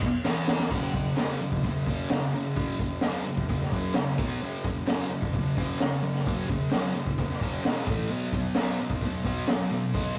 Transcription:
0.01 muted distorted electric guitar stroke medium
0.01 kick medium
0.01 crash medium
0.24 0.70 E2 loud
0.24 snare medium
0.24 clap loud
0.48 snare loud
0.59 snare medium
0.70 0.92 F#2 medium
0.70 0.93 C#3 medium
0.70 0.93 F#3 medium
0.70 kick loud
0.70 crash loud
0.94 1.15 F#2 medium
0.94 1.15 C#3 medium
0.94 kick medium
1.17 1.39 F#2 medium
1.17 1.39 C#3 medium
1.17 1.39 F#3 medium
1.17 snare medium
1.17 clap loud
1.17 open hi-hat medium
1.41 1.61 F#2 medium
1.41 1.61 C#3 medium
1.52 kick medium
1.63 1.84 F#2 medium
1.63 1.84 C#3 medium
1.63 kick medium
1.63 open hi-hat medium
1.86 2.08 F#2 medium
1.86 2.09 C#3 medium
1.86 2.09 F#3 medium
1.86 kick medium
2.09 2.31 F#2 medium
2.09 2.31 C#3 medium
2.09 snare loud
2.09 clap medium
2.09 open hi-hat medium
2.34 2.54 F#2 medium
2.34 2.54 C#3 medium
2.56 2.78 F#2 medium
2.56 2.78 C#3 medium
2.56 2.78 F#3 loud
2.56 kick loud
2.56 open hi-hat medium
2.79 3.00 F#2 medium
2.79 3.00 C#3 medium
2.79 kick medium
3.01 3.24 F#2 medium
3.01 3.25 C#3 loud
3.01 3.25 F#3 medium
3.01 snare loud
3.01 clap loud
3.01 open hi-hat medium
3.25 3.46 F#2 medium
3.25 3.46 C#3 medium
3.37 kick medium
3.49 3.70 F#2 medium
3.49 3.70 C#3 medium
3.49 kick loud
3.49 open hi-hat medium
3.61 snare soft
3.72 3.94 F#2 medium
3.72 3.94 C#3 medium
3.72 3.95 F#3 loud
3.72 kick medium
3.94 4.16 F#2 medium
3.94 4.16 C#3 medium
3.94 snare loud
3.94 clap medium
3.94 open hi-hat medium
4.18 4.40 B2 medium
4.18 4.40 F#3 medium
4.18 4.40 B3 loud
4.18 kick loud
4.41 4.63 F#2 medium
4.41 4.64 C#3 loud
4.41 4.64 F#3 loud
4.41 open hi-hat soft
4.64 4.85 F#2 medium
4.64 4.86 C#3 medium
4.64 kick medium
4.87 5.09 F#2 medium
4.87 5.09 C#3 medium
4.87 5.10 F#3 loud
4.87 snare loud
4.87 clap loud
4.87 open hi-hat medium
5.11 5.31 F#2 medium
5.11 5.32 C#3 medium
5.22 kick medium
5.34 5.54 F#2 medium
5.34 5.54 C#3 medium
5.34 kick loud
5.34 open hi-hat medium
5.57 5.78 F#2 medium
5.57 5.79 C#3 medium
5.57 5.79 F#3 medium
5.57 kick medium
5.78 6.01 F#2 medium
5.78 6.01 C#3 medium
5.78 snare loud
5.78 clap medium
5.78 open hi-hat medium
6.03 6.23 F#2 medium
6.03 6.24 C#3 medium
6.15 snare soft
6.26 6.47 F#2 medium
6.26 6.47 C#3 medium
6.26 6.48 F#3 loud
6.26 kick loud
6.26 open hi-hat medium
6.49 6.70 F#2 medium
6.49 6.69 C#3 medium
6.49 kick medium
6.71 6.93 F#2 medium
6.71 6.93 C#3 medium
6.71 6.94 F#3 loud
6.71 snare loud
6.71 clap medium
6.71 open hi-hat medium
6.94 7.15 F#2 medium
6.94 7.15 C#3 medium
7.07 kick medium
7.18 7.39 F#2 medium
7.18 7.39 C#3 medium
7.18 kick loud
7.18 open hi-hat medium
7.30 snare soft
7.41 7.63 F#2 medium
7.41 7.63 C#3 medium
7.41 7.64 F#3 medium
7.41 kick medium
7.41 clap medium
7.63 7.86 E2 medium
7.63 7.86 B2 medium
7.63 7.86 E3 medium
7.63 snare loud
7.63 clap medium
7.63 open hi-hat medium
7.87 8.09 A2 medium
7.87 8.09 E3 medium
7.87 8.09 A3 medium
7.87 kick loud
8.09 8.32 B2 medium
8.09 8.32 F#3 loud
8.09 8.33 B3 medium
8.09 open hi-hat medium
8.33 8.55 B2 medium
8.33 8.55 F#3 medium
8.33 kick medium
8.55 8.78 B2 medium
8.55 8.78 F#3 medium
8.55 8.79 B3 medium
8.55 snare loud
8.55 clap loud
8.55 open hi-hat soft
8.80 9.01 B2 medium
8.80 9.01 F#3 medium
8.90 kick medium
9.01 9.23 B2 medium
9.01 9.23 F#3 medium
9.01 kick medium
9.01 open hi-hat medium
9.25 9.47 B2 medium
9.25 9.47 F#3 medium
9.25 9.48 B3 medium
9.25 kick medium
9.47 9.69 B2 medium
9.47 9.69 F#3 medium
9.47 snare loud
9.47 clap medium
9.47 open hi-hat medium
9.71 9.92 B2 medium
9.71 9.92 F#3 medium
9.94 10.15 B2 medium
9.94 10.16 F#3 medium
9.94 10.16 B3 medium
9.94 kick loud
9.94 open hi-hat medium

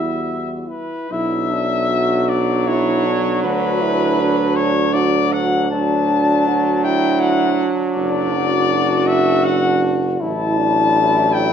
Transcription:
0.00 0.71 E2 medium
0.00 0.71 G3 medium
0.00 0.75 E4 medium
0.00 0.69 F#4 medium
0.00 0.51 E5 medium
0.68 1.09 E4 medium
0.68 1.13 B4 medium
1.10 3.46 B1 medium
1.10 5.68 F#3 loud
1.10 5.67 D4 medium
1.10 1.52 E4 loud
1.10 2.30 E5 loud
1.50 1.89 D4 medium
1.89 2.69 F#4 loud
2.29 2.69 D5 loud
2.67 3.06 E4 medium
2.67 3.42 C#5 loud
3.05 3.43 D4 medium
3.43 7.68 D2 medium
3.43 3.83 F#4 medium
3.43 4.57 B4 loud
3.82 4.22 E4 loud
4.20 4.97 D4 medium
4.56 4.95 C#5 loud
4.93 5.55 F#4 loud
4.93 5.34 D5 loud
5.32 5.70 F#5 loud
5.71 9.89 F#3 medium
5.71 10.04 D4 medium
5.71 6.49 D4 loud
5.71 6.82 A5 loud
6.48 6.86 F#4 loud
6.84 7.68 E4 loud
6.84 7.21 G5 loud
7.20 7.69 F#5 loud
7.95 10.17 F#1 loud
7.95 8.34 D4 loud
7.95 9.08 D5 loud
8.33 10.22 F#4 loud
9.07 9.46 E5 loud
9.44 9.83 F#5 loud
10.20 11.53 A1 loud
10.20 11.53 F#3 loud
10.20 11.53 E4 loud
10.20 10.59 E4 loud
10.20 11.34 A5 loud
10.58 11.53 D4 loud
11.33 11.53 G5 loud

